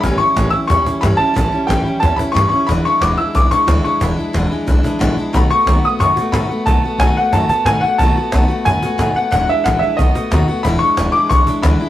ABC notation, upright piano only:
X:1
M:4/4
L:1/8
Q:1/4=181
K:Emix
V:1 name="Upright piano"
b c'2 e' c'2 b a- | a2 =g2 a b c' c' | b c' d' e' d' c'2 c' | b6 z2 |
b c'2 ^d' c'2 b2 | a2 g f a a g f | a4 g3 f | f e f e ^d3 z |
b c'2 d' c'2 b2 |]